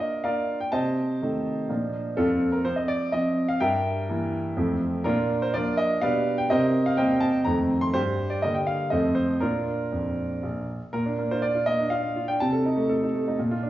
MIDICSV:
0, 0, Header, 1, 2, 480
1, 0, Start_track
1, 0, Key_signature, -2, "major"
1, 0, Tempo, 481541
1, 719, Time_signature, 3, 2, 24, 8
1, 8388, Tempo, 503778
1, 10788, Tempo, 487409
1, 13510, End_track
2, 0, Start_track
2, 0, Title_t, "Grand piano"
2, 0, Program_c, 0, 0
2, 0, Note_on_c, 0, 58, 34
2, 0, Note_on_c, 0, 62, 33
2, 0, Note_on_c, 0, 65, 36
2, 0, Note_on_c, 0, 75, 65
2, 194, Note_off_c, 0, 58, 0
2, 199, Note_off_c, 0, 62, 0
2, 199, Note_off_c, 0, 65, 0
2, 230, Note_off_c, 0, 75, 0
2, 236, Note_on_c, 0, 77, 65
2, 241, Note_on_c, 0, 70, 49
2, 243, Note_on_c, 0, 58, 33
2, 243, Note_on_c, 0, 62, 34
2, 245, Note_on_c, 0, 74, 52
2, 249, Note_on_c, 0, 65, 36
2, 577, Note_off_c, 0, 70, 0
2, 579, Note_off_c, 0, 74, 0
2, 599, Note_off_c, 0, 77, 0
2, 603, Note_on_c, 0, 79, 68
2, 684, Note_off_c, 0, 58, 0
2, 684, Note_off_c, 0, 62, 0
2, 687, Note_off_c, 0, 65, 0
2, 716, Note_on_c, 0, 81, 84
2, 720, Note_on_c, 0, 48, 46
2, 721, Note_off_c, 0, 79, 0
2, 725, Note_on_c, 0, 72, 59
2, 725, Note_on_c, 0, 75, 58
2, 935, Control_c, 0, 64, 127
2, 1188, Note_off_c, 0, 48, 0
2, 1216, Note_on_c, 0, 51, 32
2, 1219, Note_on_c, 0, 57, 38
2, 1222, Note_on_c, 0, 63, 36
2, 1651, Note_off_c, 0, 51, 0
2, 1653, Note_off_c, 0, 57, 0
2, 1654, Note_off_c, 0, 63, 0
2, 1681, Note_on_c, 0, 53, 33
2, 1687, Note_on_c, 0, 46, 44
2, 1692, Note_on_c, 0, 58, 35
2, 1696, Note_on_c, 0, 62, 34
2, 1699, Control_c, 0, 64, 0
2, 1897, Control_c, 0, 64, 127
2, 2125, Note_off_c, 0, 53, 0
2, 2130, Note_off_c, 0, 58, 0
2, 2130, Note_off_c, 0, 72, 0
2, 2130, Note_off_c, 0, 75, 0
2, 2132, Note_off_c, 0, 62, 0
2, 2153, Note_off_c, 0, 46, 0
2, 2161, Note_on_c, 0, 69, 69
2, 2165, Note_off_c, 0, 81, 0
2, 2168, Note_on_c, 0, 41, 49
2, 2168, Note_on_c, 0, 60, 52
2, 2170, Note_on_c, 0, 65, 58
2, 2178, Control_c, 0, 64, 0
2, 2347, Control_c, 0, 64, 127
2, 2504, Note_off_c, 0, 60, 0
2, 2505, Note_off_c, 0, 65, 0
2, 2514, Note_on_c, 0, 70, 64
2, 2525, Note_off_c, 0, 69, 0
2, 2635, Note_off_c, 0, 41, 0
2, 2640, Note_on_c, 0, 72, 75
2, 2641, Note_off_c, 0, 70, 0
2, 2645, Note_on_c, 0, 53, 39
2, 2650, Note_on_c, 0, 60, 44
2, 2657, Control_c, 0, 64, 0
2, 2753, Note_on_c, 0, 75, 58
2, 2765, Note_off_c, 0, 72, 0
2, 2872, Note_on_c, 0, 74, 79
2, 2881, Note_off_c, 0, 75, 0
2, 3085, Note_off_c, 0, 53, 0
2, 3088, Note_off_c, 0, 60, 0
2, 3113, Note_on_c, 0, 75, 75
2, 3119, Note_off_c, 0, 74, 0
2, 3119, Note_on_c, 0, 53, 38
2, 3125, Note_on_c, 0, 60, 44
2, 3474, Note_on_c, 0, 77, 72
2, 3478, Note_off_c, 0, 75, 0
2, 3561, Note_off_c, 0, 53, 0
2, 3564, Note_off_c, 0, 60, 0
2, 3592, Note_on_c, 0, 79, 91
2, 3597, Note_on_c, 0, 43, 61
2, 3598, Note_on_c, 0, 70, 71
2, 3599, Note_off_c, 0, 77, 0
2, 3599, Note_on_c, 0, 76, 71
2, 3826, Control_c, 0, 64, 127
2, 4064, Note_off_c, 0, 43, 0
2, 4079, Note_on_c, 0, 52, 40
2, 4081, Note_on_c, 0, 58, 41
2, 4088, Note_on_c, 0, 64, 44
2, 4519, Note_off_c, 0, 52, 0
2, 4521, Note_off_c, 0, 58, 0
2, 4524, Note_off_c, 0, 64, 0
2, 4553, Note_on_c, 0, 41, 53
2, 4556, Note_on_c, 0, 53, 37
2, 4563, Note_on_c, 0, 57, 37
2, 4568, Control_c, 0, 64, 0
2, 4572, Note_on_c, 0, 60, 41
2, 4725, Control_c, 0, 64, 127
2, 4994, Note_off_c, 0, 70, 0
2, 4995, Note_off_c, 0, 53, 0
2, 4995, Note_off_c, 0, 76, 0
2, 4998, Note_off_c, 0, 57, 0
2, 5003, Note_off_c, 0, 60, 0
2, 5019, Note_off_c, 0, 41, 0
2, 5026, Note_on_c, 0, 70, 83
2, 5031, Note_off_c, 0, 79, 0
2, 5034, Note_on_c, 0, 46, 66
2, 5036, Note_on_c, 0, 62, 65
2, 5042, Note_on_c, 0, 65, 68
2, 5052, Control_c, 0, 64, 0
2, 5239, Control_c, 0, 64, 127
2, 5371, Note_off_c, 0, 62, 0
2, 5373, Note_off_c, 0, 65, 0
2, 5391, Note_off_c, 0, 70, 0
2, 5403, Note_on_c, 0, 72, 75
2, 5500, Note_off_c, 0, 46, 0
2, 5519, Note_on_c, 0, 74, 83
2, 5520, Note_off_c, 0, 72, 0
2, 5527, Note_on_c, 0, 53, 45
2, 5527, Note_on_c, 0, 58, 45
2, 5531, Note_on_c, 0, 70, 59
2, 5532, Control_c, 0, 64, 0
2, 5533, Note_on_c, 0, 65, 61
2, 5539, Note_on_c, 0, 62, 50
2, 5748, Note_off_c, 0, 70, 0
2, 5749, Note_off_c, 0, 65, 0
2, 5756, Note_on_c, 0, 75, 86
2, 5758, Note_off_c, 0, 74, 0
2, 5962, Note_off_c, 0, 53, 0
2, 5962, Note_off_c, 0, 58, 0
2, 5968, Note_off_c, 0, 62, 0
2, 5996, Note_off_c, 0, 75, 0
2, 5996, Note_on_c, 0, 77, 83
2, 6004, Note_on_c, 0, 47, 55
2, 6004, Note_on_c, 0, 55, 44
2, 6004, Note_on_c, 0, 74, 60
2, 6009, Note_on_c, 0, 71, 60
2, 6011, Note_on_c, 0, 62, 44
2, 6187, Control_c, 0, 64, 127
2, 6335, Note_off_c, 0, 74, 0
2, 6337, Note_off_c, 0, 71, 0
2, 6355, Note_off_c, 0, 77, 0
2, 6360, Note_on_c, 0, 79, 78
2, 6438, Note_off_c, 0, 55, 0
2, 6442, Note_off_c, 0, 62, 0
2, 6464, Note_off_c, 0, 47, 0
2, 6477, Note_off_c, 0, 79, 0
2, 6480, Note_on_c, 0, 75, 89
2, 6483, Control_c, 0, 64, 0
2, 6486, Note_on_c, 0, 48, 63
2, 6489, Note_on_c, 0, 72, 68
2, 6490, Note_on_c, 0, 70, 65
2, 6638, Control_c, 0, 64, 127
2, 6815, Note_off_c, 0, 72, 0
2, 6816, Note_off_c, 0, 70, 0
2, 6835, Note_off_c, 0, 75, 0
2, 6840, Note_on_c, 0, 77, 80
2, 6944, Note_off_c, 0, 48, 0
2, 6952, Note_on_c, 0, 79, 77
2, 6956, Note_off_c, 0, 77, 0
2, 6958, Note_on_c, 0, 55, 42
2, 6960, Note_on_c, 0, 58, 45
2, 6960, Note_on_c, 0, 72, 62
2, 6962, Note_on_c, 0, 75, 60
2, 6964, Note_on_c, 0, 60, 46
2, 7180, Note_off_c, 0, 72, 0
2, 7181, Note_off_c, 0, 75, 0
2, 7184, Note_on_c, 0, 81, 85
2, 7193, Note_off_c, 0, 79, 0
2, 7396, Note_off_c, 0, 55, 0
2, 7397, Note_off_c, 0, 58, 0
2, 7399, Note_off_c, 0, 60, 0
2, 7423, Note_on_c, 0, 82, 75
2, 7428, Note_off_c, 0, 81, 0
2, 7436, Note_on_c, 0, 41, 54
2, 7436, Note_on_c, 0, 51, 39
2, 7441, Note_on_c, 0, 57, 42
2, 7444, Control_c, 0, 64, 0
2, 7450, Note_on_c, 0, 60, 41
2, 7651, Control_c, 0, 64, 127
2, 7787, Note_off_c, 0, 82, 0
2, 7788, Note_on_c, 0, 84, 81
2, 7873, Note_off_c, 0, 51, 0
2, 7876, Note_off_c, 0, 57, 0
2, 7880, Note_off_c, 0, 60, 0
2, 7898, Note_off_c, 0, 41, 0
2, 7909, Note_off_c, 0, 84, 0
2, 7911, Note_on_c, 0, 72, 91
2, 7919, Note_on_c, 0, 43, 59
2, 7923, Note_on_c, 0, 67, 65
2, 7924, Control_c, 0, 64, 0
2, 8088, Control_c, 0, 64, 127
2, 8252, Note_off_c, 0, 67, 0
2, 8270, Note_off_c, 0, 72, 0
2, 8274, Note_on_c, 0, 74, 59
2, 8381, Note_off_c, 0, 43, 0
2, 8393, Note_off_c, 0, 74, 0
2, 8396, Note_on_c, 0, 75, 77
2, 8398, Control_c, 0, 64, 0
2, 8405, Note_on_c, 0, 55, 38
2, 8407, Note_on_c, 0, 50, 39
2, 8412, Note_on_c, 0, 58, 44
2, 8510, Note_off_c, 0, 75, 0
2, 8512, Note_on_c, 0, 79, 62
2, 8627, Note_off_c, 0, 79, 0
2, 8628, Note_on_c, 0, 77, 72
2, 8830, Note_off_c, 0, 55, 0
2, 8831, Note_off_c, 0, 50, 0
2, 8833, Note_off_c, 0, 58, 0
2, 8852, Note_on_c, 0, 75, 67
2, 8862, Note_on_c, 0, 53, 33
2, 8863, Note_off_c, 0, 77, 0
2, 8864, Note_on_c, 0, 41, 47
2, 8869, Note_on_c, 0, 69, 50
2, 8869, Note_on_c, 0, 72, 49
2, 8870, Note_on_c, 0, 57, 33
2, 8870, Note_on_c, 0, 60, 35
2, 9062, Control_c, 0, 64, 127
2, 9072, Note_off_c, 0, 72, 0
2, 9087, Note_on_c, 0, 72, 68
2, 9088, Note_off_c, 0, 69, 0
2, 9096, Note_off_c, 0, 75, 0
2, 9305, Note_off_c, 0, 53, 0
2, 9309, Note_off_c, 0, 57, 0
2, 9309, Note_off_c, 0, 60, 0
2, 9329, Note_off_c, 0, 41, 0
2, 9330, Note_on_c, 0, 70, 71
2, 9336, Note_off_c, 0, 72, 0
2, 9338, Note_on_c, 0, 46, 45
2, 9339, Note_on_c, 0, 62, 49
2, 9340, Note_on_c, 0, 58, 37
2, 9341, Note_on_c, 0, 65, 51
2, 9351, Control_c, 0, 64, 0
2, 9552, Control_c, 0, 64, 127
2, 9680, Note_off_c, 0, 46, 0
2, 9729, Note_off_c, 0, 58, 0
2, 9824, Note_on_c, 0, 41, 41
2, 10164, Note_off_c, 0, 41, 0
2, 10306, Note_on_c, 0, 34, 42
2, 10324, Control_c, 0, 64, 0
2, 10512, Note_off_c, 0, 62, 0
2, 10513, Note_off_c, 0, 65, 0
2, 10546, Note_off_c, 0, 70, 0
2, 10643, Note_off_c, 0, 34, 0
2, 10782, Note_on_c, 0, 70, 75
2, 10786, Note_on_c, 0, 46, 56
2, 10909, Note_on_c, 0, 62, 45
2, 10975, Control_c, 0, 64, 127
2, 11031, Note_on_c, 0, 58, 48
2, 11102, Note_off_c, 0, 62, 0
2, 11147, Note_off_c, 0, 70, 0
2, 11160, Note_on_c, 0, 72, 72
2, 11161, Note_on_c, 0, 65, 45
2, 11223, Note_off_c, 0, 58, 0
2, 11265, Note_on_c, 0, 74, 74
2, 11273, Note_on_c, 0, 62, 41
2, 11275, Note_off_c, 0, 72, 0
2, 11279, Control_c, 0, 64, 0
2, 11348, Note_off_c, 0, 65, 0
2, 11393, Note_on_c, 0, 65, 47
2, 11463, Note_off_c, 0, 62, 0
2, 11503, Note_on_c, 0, 75, 87
2, 11507, Note_off_c, 0, 74, 0
2, 11512, Note_on_c, 0, 58, 44
2, 11583, Note_off_c, 0, 65, 0
2, 11638, Note_on_c, 0, 62, 48
2, 11702, Note_off_c, 0, 58, 0
2, 11740, Note_on_c, 0, 77, 76
2, 11746, Note_off_c, 0, 75, 0
2, 11751, Note_on_c, 0, 65, 44
2, 11825, Note_off_c, 0, 62, 0
2, 11862, Note_on_c, 0, 62, 42
2, 11941, Note_off_c, 0, 65, 0
2, 11995, Note_on_c, 0, 65, 47
2, 12056, Note_off_c, 0, 62, 0
2, 12103, Note_off_c, 0, 77, 0
2, 12113, Note_on_c, 0, 79, 81
2, 12121, Note_on_c, 0, 62, 40
2, 12183, Note_off_c, 0, 65, 0
2, 12185, Note_off_c, 0, 46, 0
2, 12230, Note_off_c, 0, 79, 0
2, 12234, Note_off_c, 0, 62, 0
2, 12234, Note_on_c, 0, 81, 89
2, 12244, Note_on_c, 0, 48, 56
2, 12356, Note_on_c, 0, 69, 50
2, 12426, Control_c, 0, 64, 127
2, 12484, Note_on_c, 0, 63, 51
2, 12544, Note_off_c, 0, 69, 0
2, 12593, Note_on_c, 0, 57, 50
2, 12668, Note_off_c, 0, 63, 0
2, 12718, Note_on_c, 0, 69, 50
2, 12783, Note_off_c, 0, 57, 0
2, 12852, Note_on_c, 0, 63, 45
2, 12906, Note_off_c, 0, 69, 0
2, 12971, Note_on_c, 0, 57, 47
2, 13033, Note_off_c, 0, 63, 0
2, 13098, Note_on_c, 0, 63, 53
2, 13152, Note_off_c, 0, 57, 0
2, 13170, Note_off_c, 0, 48, 0
2, 13197, Control_c, 0, 64, 0
2, 13204, Note_off_c, 0, 63, 0
2, 13205, Note_on_c, 0, 46, 63
2, 13327, Note_on_c, 0, 65, 52
2, 13358, Control_c, 0, 64, 127
2, 13444, Note_on_c, 0, 62, 52
2, 13510, Note_off_c, 0, 46, 0
2, 13510, Note_off_c, 0, 62, 0
2, 13510, Note_off_c, 0, 65, 0
2, 13510, Note_off_c, 0, 81, 0
2, 13510, End_track
0, 0, End_of_file